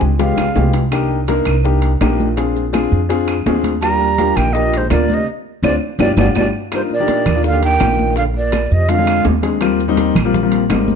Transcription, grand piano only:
0.19 G#3 B3 F4 G4
0.56 G#3 B3 F4 G4
0.92 A#3 D4 D#4 G4
1.28 A#3 D4 D#4 A#4
1.64 A#3 D4 D#4 G4
2.01 A#3 D4 D#4 G4
2.37 C4 D4 F4 G#4
2.73 C4 D4 F4 G#4
3.09 C4 D4 F4 G#4
3.46 C4 D4 F4 G#4
3.82 A#3 D4 F4 G4
4.18 A#3 D4 F4 G4
4.54 A#3 D4 F4 G4
4.91 A#3 D4 F4 A#4
5.63 C4 D4 F4
6.00 D4 F4 G4
6.18 D4 F4 G4
6.37 D4 F4 G4
6.72 A#3 D4 D#4 F4
7.00 A#3 D4 D#4 G4
7.35 A#3 D4 D#4 F4
7.53 A#3 D4 D#4 G4
7.80 A#3 D4 D#4 F4
8.88 G#3 C4 D4 F4
8.98 G#3 C4 D4 F4
9.42 G#3 C4 D4 G#4
9.61 G3 A#3 C4 F4
9.88 G3 A#3 C4 D#4
10.25 G3 A#3 C4 F4
10.42 G3 A#3 C4 F4
10.69 G3 A#3 C4 D#4

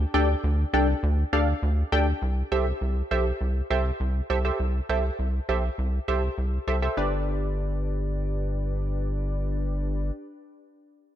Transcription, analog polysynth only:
0.14 D4 G4 A4 D5 G5
0.74 D4 G4 A4 D5 G5
1.33 D4 G4 A4 D5 F5
1.92 D4 G4 A4 D5 G5
2.52 G4 A4 C5 E5
3.11 G4 A4 C5 E5
3.70 G4 A4 C5 E5
4.30 G4 A4 C5 E5
4.45 G4 A4 C5 E5
4.89 G4 A4 C5 E5
5.49 G4 A4 C5 E5
6.08 G4 A4 C5 E5
6.68 G4 A4 C5 E5
6.82 G4 A4 C5 E5
6.97 D4 G4 B4 D5

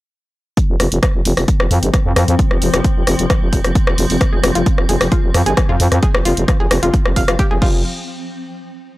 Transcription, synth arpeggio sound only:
4.33 G#4
4.55 F4
4.89 G#4
5.12 F4
5.46 G#4
5.69 F4
6.03 G#4
6.25 F4
6.60 G#4
6.83 F4
7.16 F5
7.28 F4
7.39 G4
7.51 G#4
7.62 F4

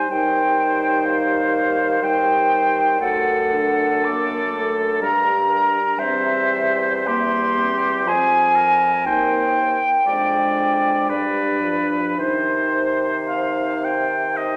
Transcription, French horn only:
0.09 G3
2.02 G3
3.00 A3
4.05 A#3
4.54 A3
5.02 G3
5.98 G3
7.06 G3
8.06 F3
9.06 A#3
10.07 G#3
11.09 G3
11.62 F3
12.18 D#3

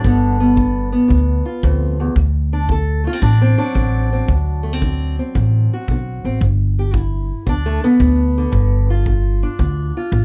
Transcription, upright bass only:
0.04 G1
1.10 D2
1.64 D2
2.16 D2
3.23 A1
3.75 A1
4.28 D2
5.36 A1
5.88 B1
6.24 A1
6.41 G1
7.47 D2
8.00 D2
8.53 G1
9.59 D2
10.12 A1

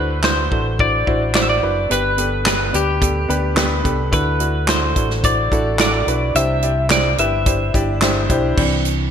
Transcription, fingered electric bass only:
Already playing: D2
0.51 A1
1.07 A1
1.63 F#1
1.90 G1
2.74 D2
3.29 D2
3.85 C2
4.12 D2
4.96 A1
5.52 A1
6.07 B1
6.35 C2
7.18 G1
7.74 G1
8.30 B1
8.57 C2

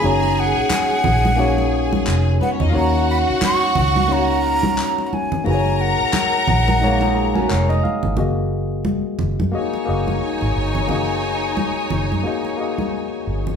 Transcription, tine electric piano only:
Already playing: C#4 D#4 F#4 C#5
0.00 A#3 C#4 D#4 F#4
0.05 C#5
1.36 A#3 C#4 D#4 F#4 C#5
2.72 A#3 C#4 D#4 F#4 C#5
4.08 A#3 C#4 D#4 F#4 C#5
5.44 A#3 D#4 F#4 G#4 B4
5.54 C#5
6.80 F#3 G#3 D#4 G#4 C#5
6.87 A#3
7.15 A#5
7.35 G#5
7.48 F#5
7.83 F5
8.16 A#3 F#4 G#4 D#5
9.52 A#3 F#4 G#4 D#5
9.86 A#3 F#4 G#4 D#5
10.87 A#3 F#4 G#4 D#5
12.23 A#3 F#4 G#4 D#5
12.57 A#3 F#4 G#4 D#5

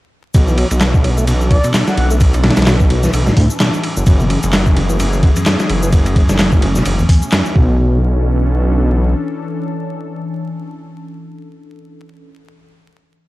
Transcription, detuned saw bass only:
0.35 B1
0.71 B1
1.98 B1
2.57 B1
3.13 B1
3.37 D2
3.97 F#1
4.07 F#1
4.44 F#1
5.70 F#1
6.30 F#1
6.86 F#1
7.56 B1

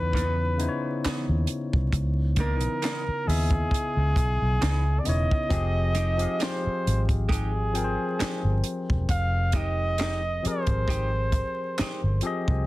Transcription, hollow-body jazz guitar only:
0.14 E3 B3 D#4
1.05 E3 B3 D#4
2.38 D#3 A#3 D4
2.55 E3 B3 D#4
2.82 E3 B3 D#4
4.61 E3 B3 D#4
5.95 G#3 D#4 G4
6.39 G#3 D#4 G4
7.29 G#3 D#4 G4
8.19 G#3 D#4 G4
9.53 G#3 D#4 G4
9.99 G#3 D#4 G4
10.88 G#3 D#4 G4
11.79 G#3 D#4 G4

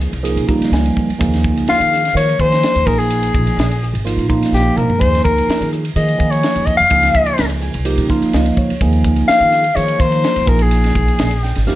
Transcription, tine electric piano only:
Already playing: F3 A#3 D#4 G#4
0.23 F3 A#3 D#4 G#4
0.47 F3 G3 A#3 D#4
0.73 G#5
1.19 F3 A#3 D#4 G#4
2.14 F3 A#3 D#4 A#4
2.40 F3 A#3 D#4 G#4
2.86 F3 A#3 D#4 G#4
4.05 F3 A#3 D#4 F4
4.29 F3 A#3 D#4 F4
4.98 F3 A#3 D#4 G#4
5.95 F3 A#3 D#4 G#4
6.18 F3 A#3 D#4 G#4
6.89 F3 A#3 D#4 G#4
7.63 G#5
7.85 F3 A#3 D#4 G4 G5
8.09 F3 A#3 D#4 F4 F5
8.34 D#5
8.58 C#5
8.81 F3 A#3 D#4 G#4
9.75 F3 A#3 D#4 G#4
9.98 F3 A#3 D#4 A#4
10.46 F3 A#3 D#4 G#4
11.43 G5
11.67 F3 A#3 D#4 G4 F5

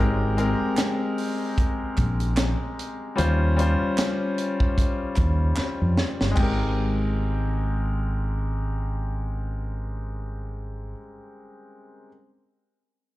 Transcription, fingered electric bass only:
Already playing: G#1
0.61 muted fingered electric bass stroke
1.98 A#1
3.19 D#2
3.82 muted fingered electric bass stroke
5.18 D#2
5.59 muted fingered electric bass stroke
5.82 F2
6.21 G1
6.37 G#1

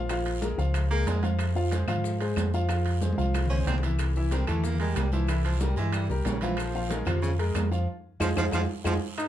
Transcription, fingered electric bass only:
Already playing: A#1
0.58 C#2
1.06 F2
1.87 G#2
2.36 F2
3.18 C2
3.66 C2
4.48 E2
4.96 C2
5.76 G2
6.09 C2
6.25 A#1
7.06 F2
7.54 F2
8.20 F2
8.37 F2
8.52 F2
8.84 F2

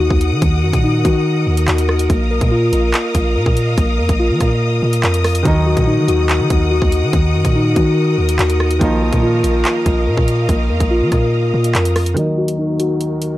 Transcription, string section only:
Already playing: A#4 D#5 F#5 D#6
2.10 F5 D#6
5.46 A#4 F#5
8.81 D#5 F5
12.17 D#2 D#3 F#4 A#4

